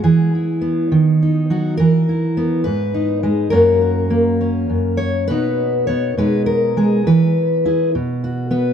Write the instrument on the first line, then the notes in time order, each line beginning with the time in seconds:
steel-string acoustic guitar
0.04 E3 G#4
0.35 E4
0.61 B3
0.92 D#3
1.23 D#4
1.50 F#3 F#4
1.77 E3 A#4
2.09 E4
2.37 B3
2.64 G#2 B4
2.94 D#4
3.23 G#3 D#4
3.50 F#2 A#3 C#4 F#4 A#4
3.81 F#4
4.10 A#3
4.41 C#4
4.69 F#2
4.97 C#5
5.28 B2 B3 D#4 B4
5.32 F#4
5.87 B3 C#5
6.17 B2 G#3 D#4 G#4 B4
6.46 A#4
6.77 G#3 G#4
7.07 E3 B4
7.65 E4 G#4
7.95 B2
8.24 F#4
8.51 B3 B4